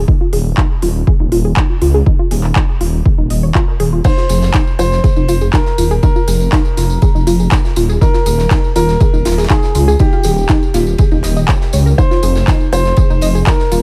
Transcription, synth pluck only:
0.08 0.17 D#4 medium
0.21 0.29 F4 medium
0.33 0.45 G#4 medium
0.58 0.67 D#4 loud
0.82 0.91 F4 medium
1.07 1.19 G#4 medium
1.20 1.28 D#4 medium
1.32 1.44 F4 medium
1.45 1.50 G#4 medium
1.57 1.62 D#4 medium
1.82 1.90 F4 medium
1.94 2.03 G#4 loud
2.06 2.15 D#4 medium
2.19 2.28 F4 medium
2.31 2.43 G#4 medium
2.56 2.65 D#4 loud
2.81 2.90 F4 medium
3.06 3.18 G#4 medium
3.18 3.27 D#4 medium
3.30 3.36 D#5 medium
3.43 3.48 C#5 medium
3.55 3.64 F4 medium
3.68 3.76 A#4 medium
3.80 3.89 G#4 loud
3.93 4.01 F4 medium
4.05 4.14 D#4 medium
4.18 4.26 F4 medium
4.30 4.42 G#4 medium
4.54 4.63 D#4 loud
4.79 4.88 F4 medium
5.04 5.16 G#4 medium
5.17 5.25 D#4 medium
5.29 5.41 F4 medium
5.41 5.46 G#4 medium
5.53 5.59 D#4 medium
5.78 5.87 F4 medium
5.91 5.99 G#4 loud
6.03 6.12 D#4 medium
6.16 6.24 F4 medium
6.28 6.40 G#4 medium
6.52 6.61 D#4 loud
6.77 6.86 F4 medium
7.02 7.14 G#4 medium
7.15 7.23 D#4 medium
7.27 7.39 F4 medium
7.40 7.45 G#4 medium
7.52 7.57 D#4 medium
7.77 7.86 F4 medium
7.89 7.98 G#4 loud
8.02 8.10 D#4 medium
8.14 8.23 F4 medium
8.26 8.38 G#4 medium
8.51 8.60 D#4 loud
8.76 8.85 F4 medium
9.01 9.13 G#4 medium
9.13 9.22 D#4 medium
9.25 9.38 F4 medium
9.38 9.43 G#4 medium
9.50 9.56 D#4 medium
9.75 9.84 F4 medium
9.88 9.96 G#4 loud
10.00 10.09 D#4 medium
10.13 10.21 F4 medium
10.25 10.37 G#4 medium
10.49 10.58 D#4 loud
10.74 10.83 F4 medium
10.99 11.11 G#4 medium
11.12 11.20 D#4 medium
11.24 11.33 D#5 medium
11.37 11.42 D#5 medium
11.48 11.57 C#5 medium
11.73 11.85 C#5 medium
11.86 11.94 A#4 medium
11.98 12.07 D#4 medium
12.11 12.19 F4 medium
12.23 12.35 G#4 medium
12.48 12.57 D#4 loud
12.73 12.81 F4 medium
12.97 13.09 G#4 medium
13.10 13.18 D#4 medium
13.22 13.31 D#5 medium
13.35 13.40 G#4 medium
13.47 13.52 D#4 medium
13.72 13.81 F4 medium

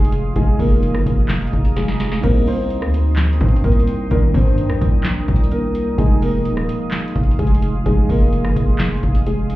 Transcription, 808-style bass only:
0.00 0.34 F1 loud
0.36 0.58 F1 loud
0.59 0.96 F1 loud
0.95 1.06 G1 loud
1.06 1.51 F1 loud
1.53 2.21 F1 loud
2.23 2.84 C2 loud
2.82 3.38 D2 loud
3.41 3.63 G2 loud
3.64 4.09 C2 loud
4.11 4.33 C2 loud
4.34 4.71 G2 loud
4.70 4.81 A#1 loud
4.81 5.04 C2 loud
5.28 5.96 C2 loud
5.98 6.47 F1 loud
6.45 6.68 D#1 loud
7.16 7.38 F1 loud
7.39 7.84 F1 loud
7.86 8.08 F1 loud
8.09 8.46 F1 loud
8.44 8.56 G1 loud
8.56 9.01 F1 loud
9.03 9.56 F1 loud

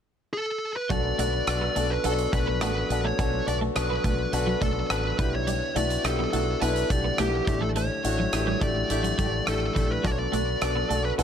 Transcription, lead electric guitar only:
0.33 0.76 A4 medium
0.76 0.91 B4 medium
0.91 1.19 D5 medium
1.20 1.93 D5 medium
1.91 2.05 B4 medium
2.05 2.33 A4 medium
2.33 2.61 B4 medium
2.62 3.06 B4 medium
3.05 3.45 C#5 medium
3.48 3.56 D5 medium
3.77 4.33 B4 medium
4.34 4.60 B4 medium
4.62 4.91 A4 medium
4.91 5.35 B4 medium
5.35 5.77 C#5 medium
5.77 6.06 D5 medium
6.06 6.58 A4 medium
6.62 6.89 B4 medium
6.92 7.17 D5 medium
7.20 7.62 G4 medium
7.63 7.68 A4 medium
7.77 8.62 C#5 medium
8.63 9.44 D5 medium
9.49 9.92 A4 medium
9.91 10.05 B4 medium
10.05 10.11 D5 medium
10.12 10.19 C#5 medium
10.19 10.33 D5 medium
10.34 11.01 D5 medium
11.05 11.10 B4 medium
11.20 11.23 A4 medium

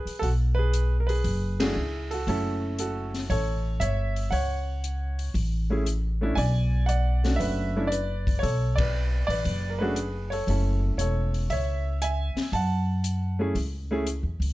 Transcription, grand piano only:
0.00 0.19 G#4 medium
0.00 0.22 B4 medium
0.19 0.31 F#4 medium
0.19 0.28 A4 medium
0.55 0.95 B4 medium
0.59 0.97 G#4 medium
1.00 1.09 A#4 medium
1.07 1.57 G#4 medium
1.07 1.60 B4 medium
1.60 1.74 A3 medium
1.60 1.74 C#4 medium
1.60 1.75 D4 medium
1.60 2.09 E4 medium
1.60 1.75 F#4 medium
1.60 2.13 G#4 medium
2.11 2.60 F#4 medium
2.11 2.28 A4 medium
2.28 3.71 A3 medium
2.28 3.72 C#4 medium
2.28 3.72 E4 medium
2.28 2.78 A4 medium
2.80 3.27 F#4 medium
2.80 3.27 A4 medium
3.30 3.78 A4 medium
3.30 3.80 C#5 medium
3.80 4.29 C#5 medium
3.80 4.33 E5 medium
4.31 5.31 C#5 medium
4.31 5.30 F#5 medium
5.70 5.84 A3 medium
5.70 5.85 C#4 medium
5.70 5.85 E4 medium
5.70 5.85 G#4 medium
6.21 6.36 A3 medium
6.21 6.36 C#4 medium
6.21 6.36 D4 medium
6.21 6.36 E4 medium
6.35 6.85 D5 medium
6.35 6.89 G#5 loud
6.86 7.36 D5 medium
6.86 7.40 F#5 medium
7.24 7.72 A3 medium
7.24 7.72 C#4 medium
7.24 7.72 D4 medium
7.24 7.72 F#4 medium
7.36 7.88 B4 medium
7.36 7.85 E5 medium
7.76 7.90 A3 medium
7.76 7.90 C#4 medium
7.76 7.90 D4 medium
7.76 7.91 E4 medium
7.87 8.42 D5 medium
7.92 8.39 B4 medium
8.39 8.76 A4 medium
8.39 8.73 C#5 medium
8.76 9.25 D5 medium
8.80 9.27 B4 medium
9.27 9.68 B4 medium
9.27 9.71 D5 loud
9.70 9.80 A#4 medium
9.79 9.95 A3 medium
9.79 9.95 C#4 medium
9.79 9.95 D4 medium
9.79 9.96 F#4 medium
9.79 10.29 G#4 medium
9.79 10.32 B4 medium
10.30 10.48 A4 medium
10.30 10.79 C#5 medium
10.48 11.92 A3 soft
10.48 11.92 C#4 soft
10.48 11.93 E4 soft
10.48 10.99 A4 medium
10.98 11.48 A4 medium
10.98 11.46 C#5 medium
11.50 11.99 C#5 medium
11.50 12.02 E5 medium
12.02 12.50 E5 medium
12.02 12.54 G#5 medium
12.53 13.53 F#5 medium
12.53 13.52 A5 medium
13.39 13.54 A3 medium
13.39 13.54 C#4 medium
13.39 13.54 E4 medium
13.39 13.55 G#4 medium
13.91 14.05 A3 medium
13.91 14.05 C#4 medium
13.91 14.06 E4 medium
13.91 14.06 G#4 medium

